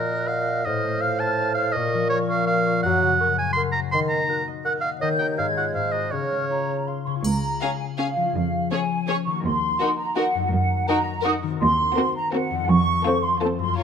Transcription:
Already playing: A#2 A#3 F#4 A#4 D#5 F#6
0.11 D#5
0.28 F5 F#5
0.47 D#5
0.65 A2 C5 D#5 F6
0.84 A3
1.01 F4 F5
1.20 C5 A5
1.40 F5
1.54 C5 F5
1.72 A#2 A#4 D#5 C#6
1.94 F3
2.10 F4 C#5
2.30 C#5 F5
2.47 F5
2.65 C#5
2.83 F#2 F#3 F#5
3.02 C#3
3.20 F#4 A#4 C#6
3.38 C#5 G#5
3.53 A#4 F#5 C6 C#6
3.72 C#5 A#5
3.92 D#3 C6
4.09 A#3 A#5
4.29 F#4 A#4 F#6
4.47 D#5
4.65 A#4 F#5 F#6
4.81 D#5 F5
5.00 D#3 C#5 D#5 G6
5.19 G4 A#4 G5
5.37 G#2 G#3 C#5 F5 G#6
5.57 F4 G#4 F#5
5.73 G#2 C5 F5 F#6
5.92 F#4 A#4 D#5
6.11 C#3 C#5 F6
6.32 G#3
6.50 F4 A#5
6.69 C#5
6.88 F5 C6
7.06 C#3 C#5 C6 C#6
7.11 C#4
7.16 F4
7.20 G#4
7.24 C#2 A#5, triangle
7.61 C#4 G#4 F5
7.79 G#5
7.97 C#4 G#4 F5
8.16 F3
8.21 C#4
8.25 F4
8.30 G#4
8.35 F2 F5
8.72 C#4 G#4 C#5 G#5
9.07 C#4 G#4 C#5 C#6
9.26 D#3 C#6
9.31 A#3
9.36 F#4
9.40 D#2 A#4
9.44 C6
9.80 D#4 F#4 A#4
9.98 A#5
10.15 D#4 F#4 A#4 F#5
10.35 F#2
10.39 D#4
10.44 F#4
10.48 A#4
10.52 F#2 F#5
10.88 D#4 F#4 A#4 A#5
11.22 D#4 F#4 A#4 D#6
11.43 D#3
11.47 C4
11.52 F#4
11.56 A#4
11.61 D#2 C6
11.97 C4 F#4 A#4
12.15 A#5
12.33 C4 F#4 A#4 F#5
12.51 F2
12.55 C4
12.60 F4
12.64 A4
12.68 F2 C#6
13.05 C4 F4 A4
13.23 C6
13.41 C4 F4 A4 A5
13.59 F#2 C6
13.63 A#3
13.68 F4
13.73 C#5
13.77 F#2 A#3 F4 C#5 A#5

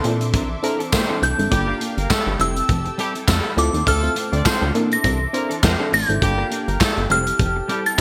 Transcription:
Already playing: A4 C6 D6
0.04 A#2 E3 C4 D4 E4 A4 E5, closed hi-hat
0.20 muted clean electric guitar stroke, closed hi-hat
0.33 A#1 E3 C4 D4 A#4, kick, closed hi-hat
0.50 muted clean electric guitar stroke
0.63 A#3 C4 D4 E4 A4 A#4, muted clean electric guitar stroke, closed hi-hat
0.79 E3 C4 D4 A4, closed hi-hat
0.92 A#2 C4 E4 A4 C5, kick, snare, clap, tambourine
1.09 E3 C4 D4 E4 A4
1.22 C2 E3 C4 D4 A4 G6, closed hi-hat
1.38 G#1 C4 D4 E4 A4, muted clean electric guitar stroke, closed hi-hat
1.51 G1 G3 A#3 D4 F4 G4 A4 F5 G5, muted clean electric guitar stroke, kick, closed hi-hat
1.67 A#3 D4 F4 A#4
1.80 A#3 D4 F4 A#4, closed hi-hat
1.97 G1 A#3 A#4, muted clean electric guitar stroke, closed hi-hat
2.10 A3 A4, muted clean electric guitar stroke, kick, snare, clap, tambourine
2.26 G1, muted clean electric guitar stroke
2.39 F1 G3 C4 E4 G4 A4 C5 A5 E6, closed hi-hat
2.56 muted clean electric guitar stroke, closed hi-hat
2.69 F1, muted clean electric guitar stroke, kick, closed hi-hat
2.85 muted clean electric guitar stroke, closed hi-hat
2.98 G3 C4 E4 G4 A4, closed hi-hat
3.14 G3 C4 E4 A4, closed hi-hat
3.27 F2 A3 A4, muted clean electric guitar stroke, kick, snare, clap, tambourine
3.44 muted clean electric guitar stroke
3.56 D2 A3 C4 E4 F4 A4 C6 D6, closed hi-hat
3.73 D#2 A3 C4 F4 A4, closed hi-hat
3.86 D2 A3 C4 F4 A4 F6, kick, closed hi-hat
4.02 C4 E4 F4 A4, muted clean electric guitar stroke, closed hi-hat
4.15 A3 C4 F4 C5, closed hi-hat
4.32 D2 A3 C4 D4 F4 C5 D5, closed hi-hat
4.45 C4 E4 F4 A4 C5, muted clean electric guitar stroke, kick, snare, clap, tambourine
4.61 D2 A3 C4 F4 A4
4.74 A#2 E3 C4 D4 E4 A4 E5, closed hi-hat
4.91 A#6, muted clean electric guitar stroke, closed hi-hat
5.03 C2 E3 C4 D4 A#4, kick, closed hi-hat
5.20 muted clean electric guitar stroke
5.33 A#3 C4 D4 E4 A#4 C5, muted clean electric guitar stroke, closed hi-hat
5.49 E3 C4 D4 A4, closed hi-hat
5.62 F2 C4 E4 A#4 C5, muted clean electric guitar stroke, kick, snare, clap, tambourine
5.79 E3 C4 D4 E4 A4
5.92 A1 E3 C4 D4 A4 G6, open hi-hat
6.08 G#1 C4 D4 E4 A4, muted clean electric guitar stroke, closed hi-hat
6.21 G1 G3 A#3 D4 F4 G4 A4 F5 G5, muted clean electric guitar stroke, kick, closed hi-hat
6.37 A#3 D4 F4 A#4
6.50 A#3 D4 F4 A#4, closed hi-hat
6.67 G1 A#3 A#4, muted clean electric guitar stroke, closed hi-hat
6.80 A3 A4, muted clean electric guitar stroke, kick, snare, clap, tambourine
6.97 G1, muted clean electric guitar stroke, closed hi-hat
7.09 F1 G3 C4 E4 G4 A4 C5 A5 F6, closed hi-hat
7.26 muted clean electric guitar stroke, closed hi-hat
7.39 F1, muted clean electric guitar stroke, kick, closed hi-hat
7.56 muted clean electric guitar stroke
7.68 G3 C4 E4 G4 A4, closed hi-hat
7.85 G3 C4 E4 A4 A6, closed hi-hat

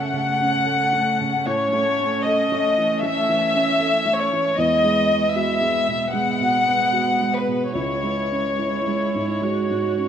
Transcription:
Already playing: F#2 C#3 A3 C#4 A4 F#5
0.13 C#3
0.40 C#4
0.66 A4
0.93 A3
1.21 C#3
1.46 A2 C#4 C#5
1.73 A3
1.99 C#4
2.26 A4 D#5
2.52 A3
2.78 E3
3.03 A3 E5
3.29 E3
3.54 C#4
3.80 A4
4.05 A3
4.19 C#5
4.32 E3
4.58 E2 G#3 B3 D#5
4.84 G#3
5.10 B3
5.35 G#3 B3 F#4 E5
5.61 G#3
5.88 B2
6.13 G#3 B3 F#5
6.40 B2
6.66 B3
6.93 F#4
7.20 G#3
7.34 B4
7.48 B2
7.75 C#2 G#3 E4 C#5
8.03 G#3
8.31 C#4
8.59 E4
8.86 G#3
9.14 G#2
9.41 G#3 F#4
9.70 G#2
9.97 C#4

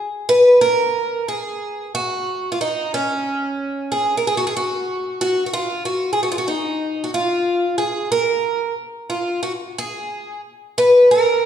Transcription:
0.29 B4
0.61 A#4
1.28 G#4
1.95 F#4
2.52 F4
2.61 D#4
2.94 C#4
3.92 G#4
4.17 A#4
4.27 G#4
4.37 F#4
4.47 G#4
4.57 F#4
5.21 F#4
5.46 F#4
5.53 F4
5.85 F#4
6.13 G#4
6.23 F#4
6.32 F4
6.38 F#4
6.48 D#4
7.04 F#4
7.14 F4
7.78 G#4
8.12 A#4
9.10 F4
9.43 F#4
9.78 G#4
10.78 B4
11.11 A#4

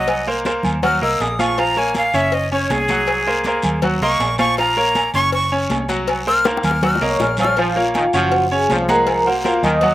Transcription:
Already playing: C2 F#3 F#4 D#5 F#5
0.08 cowbell, high conga, low agogo, long guiro
0.27 A#3 A#4 C5, high conga
0.45 A#3 A#4 C5, cowbell, high conga, low timbale, low agogo, short guiro
0.63 D#2, low conga, low agogo, short guiro
0.83 F#3 F#4 F#5 F6, cowbell, high conga, low conga, low agogo, long guiro
1.02 C2 A#3 A#4 D#5 E6, high conga
1.20 A#1 D#6, cowbell, high conga, low timbale, low agogo, short guiro
1.39 F3 F4 F5 C#6, high conga, low agogo, short guiro
1.57 F3 F4 F5 A#5, cowbell, high conga, low agogo, long guiro
1.76 A#3 A#4 C#5 G#5, high conga
1.94 F5, cowbell, high conga, low timbale, low agogo, short guiro
2.13 F#1 C#4 C#5 E5, high conga, low agogo, short guiro
2.32 D#5, cowbell, high conga, long guiro
2.51 C#4 C#5, high conga, low agogo
2.70 C2 G#4, cowbell, high conga, low timbale, low agogo, short guiro
2.88 F#3 F#4 F#5, cowbell, high conga, short guiro
3.07 cowbell, high conga, low agogo, long guiro
3.26 A#3 A#4 C5, high conga
3.44 A#3 A#4 C5, cowbell, high conga, low timbale, low agogo, short guiro
3.62 D#2, low conga, low agogo, short guiro
3.82 F#3 F#4 F#5, cowbell, high conga, low conga, low agogo, long guiro
4.01 C2 A#3 A#4 D#5 C#6, high conga
4.19 A#1, cowbell, high conga, low timbale, low agogo, short guiro
4.38 F3 F4 F5 C#6, high conga, low agogo, short guiro
4.57 F3 F4 F5 A#5, cowbell, high conga, low agogo, long guiro
4.76 A#3 A#4 C#5, high conga
4.95 cowbell, high conga, low timbale, low agogo, short guiro
5.14 F#1 C#4 C#5 C#6, high conga, low agogo, short guiro
5.32 C#6, cowbell, high conga, long guiro
5.52 C#4 C#5, high conga, low agogo
5.69 C2, cowbell, high conga, low timbale, low agogo, short guiro
5.88 F#3 F#4 F#5, cowbell, high conga, short guiro
6.07 cowbell, high conga, low agogo, long guiro
6.26 A#3 A#4 C5 F6, high conga
6.44 A#3 A#4 C5, cowbell, high bongo, high conga, high timbale, low agogo, short guiro
6.57 high bongo
6.63 D#2 F6, low conga, low agogo, short guiro
6.71 high bongo
6.81 F#3 F#4 F#5 F6, cowbell, high bongo, high conga, low conga, low agogo, long guiro
6.95 low bongo
7.01 C2 A#3 A#4 C#5 D#5 C#6, high conga, low timbale
7.19 A#1 F6, cowbell, low bongo, low timbale, low agogo, short guiro
7.37 F3 F4 F5 F6, low conga, low timbale, low agogo, short guiro
7.44 low bongo
7.56 F3 F4 F5, cowbell, high conga, low agogo, long guiro
7.76 A#3 F4 A#4 C#5 F5, high conga
7.94 D#3, cowbell, high conga, low timbale, low agogo, short guiro
8.13 F#1 F3 C#4 F#4 C#5 F#5, high conga, low agogo, short guiro
8.32 cowbell, high conga, long guiro
8.51 C#4 G#4 C#5 G#5, high conga, low agogo
8.69 C2 F3, cowbell, high conga, low timbale, low agogo, short guiro
8.89 G#3 G#4 A#4 F#5 A#5, cowbell, high conga, short guiro
9.07 cowbell, high conga, low agogo, long guiro
9.26 A#3 F#4 A#4 C5 F#5, high conga
9.44 A#3 F4 A#4 C5 F5, cowbell, high conga, low timbale, low agogo, short guiro
9.63 D#2 D#3 D#5 D#6, low conga, low agogo, short guiro
9.81 F#3 F#4 D#5 F#5 D#6, cowbell, high conga, low conga, low agogo, long guiro

